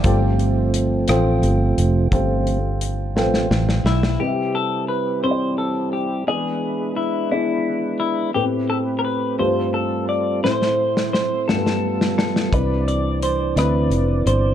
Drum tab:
HH |x-x-x-x-x-x-|x-x-x-------|------------|------------|
SD |------r-----|------oooooo|------------|------------|
BD |o-----------|o-----------|------------|------------|

HH |------------|------------|x-x-x-x-x-x-|
SD |------------|oo-oo-oo-ooo|------r-----|
BD |------------|------------|o-----------|